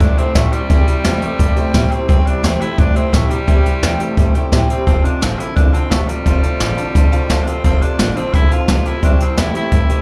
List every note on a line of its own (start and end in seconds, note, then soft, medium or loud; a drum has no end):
0.00 0.12 G2 medium
0.00 0.16 C3 medium
0.00 0.18 G3 medium
0.00 0.16 A3 medium
0.00 0.18 C4 medium
0.00 0.20 D4 loud
0.00 0.18 E4 medium
0.00 0.16 G4 medium
0.00 0.11 C5 medium
0.00 0.11 E5 medium
0.00 0.11 A5 medium
0.00 kick loud
0.00 closed hi-hat medium
0.17 0.33 C3 medium
0.17 0.34 A3 medium
0.17 0.37 C4 medium
0.17 0.35 C4 soft
0.17 0.35 E4 medium
0.17 0.35 G4 medium
0.17 0.28 C5 loud
0.17 0.28 E5 medium
0.17 0.28 G5 loud
0.17 muted upright bass stroke medium
0.17 closed hi-hat medium
0.34 0.47 A2 medium
0.34 0.52 C3 medium
0.34 0.51 C3 medium
0.34 0.53 G3 medium
0.34 0.51 G3 medium
0.34 0.54 A3 loud
0.34 0.53 C4 medium
0.34 0.52 E4 medium
0.34 0.51 G4 medium
0.34 0.45 C5 medium
0.34 0.45 E5 medium
0.34 0.45 G5 loud
0.34 kick medium
0.34 snare loud
0.34 closed hi-hat loud
0.52 0.68 C3 medium
0.52 1.93 G3 medium
0.52 0.69 G3 medium
0.52 0.69 C4 soft
0.52 0.70 E4 soft
0.52 0.69 G4 soft
0.52 0.63 C5 medium
0.52 0.63 E5 medium
0.52 0.63 G5 medium
0.52 muted upright bass stroke medium
0.52 closed hi-hat medium
0.70 0.82 C2 medium
0.70 0.87 C3 medium
0.70 0.86 C3 medium
0.70 0.87 G3 medium
0.70 0.86 G3 medium
0.70 0.88 C4 medium
0.70 0.87 E4 medium
0.70 0.86 G4 medium
0.70 0.80 C5 medium
0.70 0.80 E5 medium
0.70 0.80 G5 loud
0.70 kick loud
0.70 closed hi-hat medium
0.87 1.03 C3 medium
0.87 1.03 G3 medium
0.87 1.04 C4 medium
0.87 1.04 E4 medium
0.87 1.04 G4 medium
0.87 0.98 E5 medium
0.87 0.98 G5 medium
0.87 muted upright bass stroke medium
0.87 closed hi-hat medium
1.04 1.17 E2 medium
1.04 1.22 C3 loud
1.04 1.20 C3 medium
1.04 1.22 G3 medium
1.04 1.21 A3 medium
1.04 1.22 C4 loud
1.04 1.22 E4 loud
1.04 1.20 G4 loud
1.04 1.15 C5 medium
1.04 1.15 E5 medium
1.04 1.15 G5 medium
1.04 snare loud
1.04 closed hi-hat medium
1.22 1.38 C3 medium
1.22 1.38 A3 medium
1.22 1.38 C4 soft
1.22 1.39 E4 medium
1.22 1.39 G4 medium
1.22 1.32 C5 medium
1.22 1.32 E5 medium
1.22 1.32 G5 loud
1.22 muted upright bass stroke medium
1.22 closed hi-hat medium
1.38 1.51 G2 medium
1.38 1.55 C3 medium
1.38 1.56 G3 medium
1.38 1.55 A3 medium
1.38 1.57 C4 medium
1.38 1.56 E4 medium
1.38 1.55 G4 medium
1.38 1.50 C5 medium
1.38 1.50 E5 medium
1.38 1.50 G5 loud
1.38 kick loud
1.38 closed hi-hat medium
1.56 1.72 C3 medium
1.56 1.72 A3 medium
1.56 1.74 C4 medium
1.56 1.74 E4 medium
1.56 1.74 G4 medium
1.56 1.67 C5 loud
1.56 1.67 E5 loud
1.56 1.67 G5 loud
1.56 muted upright bass stroke medium
1.56 closed hi-hat medium
1.74 1.86 A2 medium
1.74 1.89 C3 medium
1.74 1.91 C3 medium
1.74 1.90 G3 medium
1.74 1.92 G3 medium
1.74 1.92 C4 medium
1.74 1.91 E4 medium
1.74 1.90 G4 loud
1.74 1.84 C5 loud
1.74 1.85 E5 loud
1.74 1.85 G5 loud
1.74 kick medium
1.74 snare loud
1.74 closed hi-hat medium
1.91 2.07 C3 medium
1.91 2.07 G3 medium
1.91 2.07 C4 medium
1.91 2.08 C4 soft
1.91 2.08 E4 medium
1.91 2.09 G4 medium
1.91 2.02 C5 medium
1.91 2.02 E5 medium
1.91 2.02 G5 medium
1.91 muted upright bass stroke medium
1.91 closed hi-hat medium
2.08 2.21 C2 medium
2.08 2.26 C3 medium
2.08 2.24 C3 medium
2.08 2.26 G3 medium
2.08 2.25 G3 loud
2.08 2.28 C4 medium
2.08 2.26 C4 medium
2.08 2.25 E4 medium
2.08 2.24 G4 loud
2.08 2.19 C5 medium
2.08 2.20 E5 medium
2.08 2.20 G5 medium
2.08 kick loud
2.08 closed hi-hat medium
2.25 2.42 C3 medium
2.25 2.42 G3 medium
2.25 2.43 C4 soft
2.25 2.46 D4 medium
2.25 2.43 E4 medium
2.25 2.43 G4 medium
2.25 2.36 C5 medium
2.25 2.37 E5 medium
2.25 2.37 G5 medium
2.25 muted upright bass stroke medium
2.25 closed hi-hat medium
2.43 2.56 E2 medium
2.43 2.61 C3 medium
2.43 2.59 C3 medium
2.43 2.61 G3 medium
2.43 2.59 A3 medium
2.43 2.61 C4 medium
2.43 2.62 C4 loud
2.43 2.60 E4 medium
2.43 2.59 G4 medium
2.43 2.54 C5 medium
2.43 2.54 E5 medium
2.43 2.54 G5 medium
2.43 snare loud
2.43 closed hi-hat medium
2.61 2.77 C3 medium
2.61 2.77 A3 medium
2.61 2.78 C4 soft
2.61 2.80 E4 loud
2.61 2.78 E4 soft
2.61 2.78 G4 medium
2.61 2.72 C5 medium
2.61 2.72 E5 medium
2.61 2.72 G5 medium
2.61 closed hi-hat medium
2.78 2.90 G2 medium
2.78 2.94 C3 medium
2.78 2.95 G3 medium
2.78 2.94 A3 medium
2.78 2.96 C4 medium
2.78 2.98 D4 loud
2.78 2.95 E4 medium
2.78 2.94 G4 medium
2.78 2.89 C5 medium
2.78 2.89 E5 medium
2.78 2.89 G5 medium
2.78 kick loud
2.78 closed hi-hat medium
2.95 3.11 C3 medium
2.95 3.12 A3 medium
2.95 3.15 C4 medium
2.95 3.12 C4 soft
2.95 3.12 E4 medium
2.95 3.13 G4 medium
2.95 3.06 C5 loud
2.95 3.06 E5 loud
2.95 3.06 G5 loud
2.95 muted upright bass stroke medium
2.95 closed hi-hat medium
3.12 3.25 A2 medium
3.12 3.30 C3 medium
3.12 3.29 C3 medium
3.12 3.30 G3 medium
3.12 3.29 G3 medium
3.12 3.32 A3 medium
3.12 3.31 C4 medium
3.12 3.30 E4 medium
3.12 3.29 G4 medium
3.12 3.24 C5 medium
3.12 3.24 E5 medium
3.12 3.24 G5 loud
3.12 kick medium
3.12 snare loud
3.12 closed hi-hat medium
3.30 3.46 C3 medium
3.30 4.42 G3 medium
3.30 3.46 G3 medium
3.30 3.47 C4 soft
3.30 3.47 E4 medium
3.30 3.48 G4 medium
3.30 3.41 C5 medium
3.30 3.41 E5 medium
3.30 3.41 A5 medium
3.30 muted upright bass stroke medium
3.30 closed hi-hat medium
3.47 3.60 C2 medium
3.47 3.65 C3 medium
3.47 3.63 C3 medium
3.47 3.65 G3 medium
3.47 3.64 G3 medium
3.47 3.65 C4 medium
3.47 3.65 E4 medium
3.47 3.64 G4 medium
3.47 3.58 C5 medium
3.47 3.58 E5 medium
3.47 3.59 G5 medium
3.47 kick loud
3.47 closed hi-hat medium
3.65 3.81 C3 medium
3.65 3.81 G3 medium
3.65 3.82 C4 soft
3.65 3.83 E4 soft
3.65 3.83 G4 medium
3.65 3.76 C5 medium
3.65 3.76 E5 medium
3.65 3.76 G5 medium
3.65 closed hi-hat medium
3.82 3.95 E2 medium
3.82 3.98 C3 medium
3.82 4.00 C3 loud
3.82 4.00 G3 medium
3.82 3.98 A3 loud
3.82 4.00 C4 medium
3.82 4.00 E4 loud
3.82 3.98 G4 loud
3.82 3.93 C5 medium
3.82 3.93 E5 medium
3.82 3.93 G5 medium
3.82 snare loud
3.82 closed hi-hat loud
4.00 4.16 C3 medium
4.00 4.16 A3 medium
4.00 4.17 C4 soft
4.00 4.17 E4 medium
4.00 4.17 G4 medium
4.00 4.10 C5 medium
4.00 4.10 E5 medium
4.00 4.10 G5 loud
4.00 muted upright bass stroke medium
4.00 closed hi-hat medium
4.17 4.29 G2 medium
4.17 4.33 C3 medium
4.17 4.34 G3 medium
4.17 4.33 A3 medium
4.17 4.35 C4 medium
4.17 4.34 E4 medium
4.17 4.33 G4 medium
4.17 4.28 C5 medium
4.17 4.28 E5 medium
4.17 4.28 G5 medium
4.17 kick loud
4.17 closed hi-hat medium
4.34 4.50 C3 medium
4.34 4.50 A3 medium
4.34 4.52 C4 soft
4.34 4.52 E4 medium
4.34 4.52 G4 medium
4.34 4.45 C5 loud
4.34 4.45 E5 loud
4.34 4.45 G5 loud
4.34 muted upright bass stroke medium
4.34 closed hi-hat medium
4.52 4.64 A2 medium
4.52 4.67 C3 medium
4.52 4.69 C3 medium
4.52 4.68 G3 medium
4.52 4.70 G3 medium
4.52 4.70 C4 medium
4.52 4.69 E4 loud
4.52 4.68 G4 loud
4.52 4.63 C5 loud
4.52 4.63 E5 loud
4.52 4.63 G5 loud
4.52 kick medium
4.52 snare loud
4.52 closed hi-hat medium
4.69 4.85 C3 medium
4.69 4.85 G3 medium
4.69 4.86 C4 medium
4.69 4.86 C4 soft
4.69 4.87 E4 soft
4.69 4.86 G4 soft
4.69 4.80 C5 medium
4.69 4.80 E5 medium
4.69 4.80 G5 medium
4.69 muted upright bass stroke medium
4.69 closed hi-hat medium
4.86 4.99 F1 loud
4.86 5.02 F2 medium
4.86 5.02 C3 medium
4.86 5.04 F3 medium
4.86 5.06 C4 medium
4.86 5.04 C4 medium
4.86 5.04 F4 medium
4.86 5.02 A4 medium
4.86 4.97 C5 medium
4.86 4.97 F5 medium
4.86 4.97 A5 loud
4.86 kick loud
4.86 closed hi-hat medium
5.03 5.20 F2 medium
5.03 5.20 C3 medium
5.03 5.20 C4 soft
5.03 5.24 D4 medium
5.03 5.21 F4 medium
5.03 5.21 A4 medium
5.03 5.15 C5 medium
5.03 5.15 F5 medium
5.03 5.15 A5 medium
5.03 muted upright bass stroke medium
5.03 closed hi-hat medium
5.21 5.34 A1 medium
5.21 5.37 F2 medium
5.21 5.37 D3 medium
5.21 5.39 F3 medium
5.21 5.39 C4 medium
5.21 5.40 C4 medium
5.21 5.39 F4 medium
5.21 5.37 A4 medium
5.21 5.32 C5 medium
5.21 5.32 F5 medium
5.21 5.32 A5 medium
5.21 snare loud
5.21 closed hi-hat medium
5.38 5.54 F2 medium
5.38 5.55 D3 medium
5.38 5.56 C4 soft
5.38 5.55 E4 medium
5.38 5.56 F4 medium
5.38 5.56 A4 medium
5.38 5.49 C5 medium
5.38 5.49 F5 medium
5.38 5.49 G5 medium
5.38 muted upright bass stroke medium
5.38 closed hi-hat medium
5.56 5.69 C2 medium
5.56 5.72 F2 medium
5.56 5.72 D3 medium
5.56 5.73 F3 medium
5.56 5.74 C4 medium
5.56 5.75 D4 loud
5.56 5.73 F4 medium
5.56 5.72 A4 medium
5.56 5.66 C5 medium
5.56 5.67 F5 medium
5.56 5.67 A5 medium
5.56 kick loud
5.56 closed hi-hat medium
5.73 5.89 F2 medium
5.73 5.90 D3 medium
5.73 5.92 C4 loud
5.73 5.90 C4 soft
5.73 5.91 F4 soft
5.73 5.91 A4 medium
5.73 5.84 C5 loud
5.73 5.84 F5 medium
5.73 5.84 A5 loud
5.73 closed hi-hat medium
5.90 6.03 D2 medium
5.90 6.07 F2 medium
5.90 6.07 C3 medium
5.90 6.08 F3 medium
5.90 6.09 A3 medium
5.90 6.09 C4 medium
5.90 6.08 F4 medium
5.90 6.06 A4 medium
5.90 6.01 C5 medium
5.90 6.01 F5 medium
5.90 6.01 A5 loud
5.90 kick medium
5.90 snare loud
5.90 closed hi-hat medium
6.08 6.24 F2 medium
6.08 6.24 C3 medium
6.08 7.44 G3 medium
6.08 6.25 C4 soft
6.08 6.26 F4 medium
6.08 6.25 A4 medium
6.08 6.19 C5 medium
6.08 6.19 F5 medium
6.08 6.19 A5 medium
6.08 closed hi-hat medium
6.25 6.38 F1 loud
6.25 6.41 F2 medium
6.25 6.41 C3 medium
6.25 6.43 F3 medium
6.25 6.43 C4 medium
6.25 6.44 F4 medium
6.25 6.42 A4 medium
6.25 6.36 C5 medium
6.25 6.36 F5 medium
6.25 6.36 A5 loud
6.25 kick loud
6.25 closed hi-hat medium
6.43 6.59 F2 medium
6.43 6.59 C3 medium
6.43 6.60 C4 soft
6.43 6.61 F4 medium
6.43 6.61 A4 medium
6.43 6.53 C5 medium
6.43 6.53 F5 medium
6.43 6.53 A5 medium
6.43 muted upright bass stroke medium
6.43 closed hi-hat medium
6.60 6.72 A1 medium
6.60 6.76 F2 medium
6.60 6.76 D3 loud
6.60 6.78 F3 medium
6.60 6.78 C4 medium
6.60 6.78 F4 medium
6.60 6.77 A4 medium
6.60 6.71 C5 medium
6.60 6.71 F5 medium
6.60 6.71 A5 medium
6.60 snare loud
6.60 closed hi-hat medium
6.77 6.93 F2 medium
6.77 6.94 D3 medium
6.77 6.94 C4 soft
6.77 6.95 F4 medium
6.77 6.95 A4 medium
6.77 6.88 C5 medium
6.77 6.88 F5 medium
6.77 6.88 A5 loud
6.77 muted upright bass stroke medium
6.77 closed hi-hat medium
6.95 7.07 C2 medium
6.95 7.11 F2 medium
6.95 7.11 D3 medium
6.95 7.12 F3 medium
6.95 7.13 C4 medium
6.95 7.12 F4 medium
6.95 7.11 A4 medium
6.95 7.05 C5 medium
6.95 7.05 F5 medium
6.95 7.05 A5 medium
6.95 kick loud
6.95 snare soft
6.95 closed hi-hat medium
7.12 7.28 F2 medium
7.12 7.28 D3 medium
7.12 7.29 C4 soft
7.12 7.29 F4 medium
7.12 7.29 A4 medium
7.12 7.22 C5 loud
7.12 7.23 F5 loud
7.12 7.23 A5 loud
7.12 muted upright bass stroke medium
7.12 closed hi-hat medium
7.29 7.42 D2 medium
7.29 7.45 F2 medium
7.29 7.45 C3 medium
7.29 7.47 F3 medium
7.29 7.47 C4 medium
7.29 7.46 F4 loud
7.29 7.45 A4 loud
7.29 7.40 C5 loud
7.29 7.40 F5 loud
7.29 7.40 A5 loud
7.29 kick medium
7.29 snare loud
7.29 closed hi-hat medium
7.43 7.49 D4 medium
7.43 7.64 A4 medium
7.43 muted upright bass stroke medium
7.47 7.63 F2 medium
7.47 7.63 C3 medium
7.47 7.64 C4 medium
7.47 7.63 C4 soft
7.47 7.64 F4 medium
7.47 7.57 C5 medium
7.47 7.57 F5 medium
7.47 7.58 A5 medium
7.47 closed hi-hat medium
7.64 7.76 F1 loud
7.64 7.80 F2 medium
7.64 7.80 C3 medium
7.64 7.81 F3 medium
7.64 7.82 C4 medium
7.64 7.83 C4 loud
7.64 7.82 F4 medium
7.64 7.80 A4 medium
7.64 7.74 C5 loud
7.64 7.75 F5 medium
7.64 7.75 A5 loud
7.64 kick loud
7.64 closed hi-hat medium
7.81 7.97 F2 medium
7.81 7.97 C3 medium
7.81 7.98 C4 soft
7.81 8.18 D4 medium
7.81 7.99 F4 soft
7.81 7.99 A4 medium
7.81 7.92 C5 medium
7.81 7.92 F5 medium
7.81 7.92 A5 medium
7.81 closed hi-hat medium
7.98 8.11 A1 medium
7.98 8.14 F2 medium
7.98 8.15 D3 medium
7.98 8.16 F3 medium
7.98 8.17 C4 medium
7.98 8.16 F4 loud
7.98 8.15 A4 medium
7.98 8.09 C5 medium
7.98 8.09 F5 medium
7.98 8.09 A5 medium
7.98 snare loud
7.98 closed hi-hat medium
8.16 8.31 F2 medium
8.16 8.32 D3 medium
8.16 8.35 C4 loud
8.16 8.33 C4 soft
8.16 8.34 F4 soft
8.16 8.34 A4 medium
8.16 8.27 C5 medium
8.16 8.27 F5 medium
8.16 8.27 A5 medium
8.16 closed hi-hat medium
8.33 8.46 C2 medium
8.33 8.49 F2 medium
8.33 8.49 D3 medium
8.33 8.51 F3 medium
8.33 8.51 C4 medium
8.33 8.54 E4 loud
8.33 8.51 F4 medium
8.33 8.50 A4 medium
8.33 8.44 C5 medium
8.33 8.44 F5 medium
8.33 8.44 G5 medium
8.33 kick loud
8.33 closed hi-hat medium
8.50 8.66 F2 medium
8.50 8.66 D3 medium
8.50 8.67 C4 soft
8.50 8.88 F4 loud
8.50 8.68 F4 soft
8.50 8.68 A4 medium
8.50 8.61 C5 loud
8.50 8.61 F5 medium
8.50 8.62 A5 loud
8.50 closed hi-hat medium
8.68 8.80 B1 loud
8.68 8.84 F2 medium
8.68 8.84 C3 medium
8.68 8.85 F3 medium
8.68 8.86 C4 medium
8.68 8.85 F4 medium
8.68 8.84 A4 loud
8.68 8.79 C5 loud
8.68 8.79 F5 medium
8.68 8.79 A5 loud
8.68 kick medium
8.68 snare loud
8.68 closed hi-hat medium
8.85 9.01 F2 medium
8.85 9.01 C3 medium
8.85 9.02 C4 soft
8.85 9.03 E4 loud
8.85 9.03 F4 medium
8.85 9.03 A4 medium
8.85 8.96 C5 medium
8.85 8.96 F5 medium
8.85 8.96 A5 medium
8.85 muted upright bass stroke medium
8.85 closed hi-hat medium
9.02 9.15 C2 loud
9.02 9.20 C3 medium
9.02 9.18 C3 medium
9.02 9.20 G3 medium
9.02 9.19 G3 medium
9.02 9.20 C4 medium
9.02 9.20 D4 loud
9.02 9.20 E4 medium
9.02 9.18 G4 medium
9.02 9.13 C5 medium
9.02 9.13 E5 medium
9.02 9.13 G5 loud
9.02 kick loud
9.02 closed hi-hat medium
9.20 9.36 C3 medium
9.20 9.36 G3 medium
9.20 9.40 C4 medium
9.20 9.37 C4 soft
9.20 9.37 E4 medium
9.20 9.37 G4 medium
9.20 9.30 C5 medium
9.20 9.30 E5 medium
9.20 9.30 A5 medium
9.20 closed hi-hat medium
9.37 9.49 E2 medium
9.37 9.54 C3 medium
9.37 9.53 C3 medium
9.37 9.55 G3 medium
9.37 9.53 A3 loud
9.37 9.55 C4 medium
9.37 9.54 E4 medium
9.37 9.55 E4 loud
9.37 9.53 G4 medium
9.37 9.48 C5 medium
9.37 9.48 E5 medium
9.37 9.48 G5 medium
9.37 snare loud
9.37 closed hi-hat medium
9.54 9.70 C3 medium
9.54 9.71 A3 medium
9.54 9.71 C4 soft
9.54 9.72 E4 medium
9.54 10.02 E4 loud
9.54 9.72 G4 medium
9.54 9.65 C5 medium
9.54 9.65 E5 medium
9.54 9.65 G5 medium
9.54 muted upright bass stroke medium
9.54 closed hi-hat medium
9.72 9.84 G2 medium
9.72 9.88 C3 medium
9.72 9.89 G3 medium
9.72 9.88 A3 loud
9.72 9.90 C4 medium
9.72 9.89 E4 medium
9.72 9.88 G4 medium
9.72 9.83 C5 medium
9.72 9.83 E5 medium
9.72 9.83 G5 medium
9.72 kick loud
9.72 closed hi-hat medium
9.89 10.02 C3 medium
9.89 10.02 A3 medium
9.89 10.02 C4 soft
9.89 10.02 E4 soft
9.89 10.02 G4 soft
9.89 10.00 C5 loud
9.89 10.00 E5 medium
9.89 10.00 G5 loud
9.89 muted upright bass stroke medium
9.89 closed hi-hat medium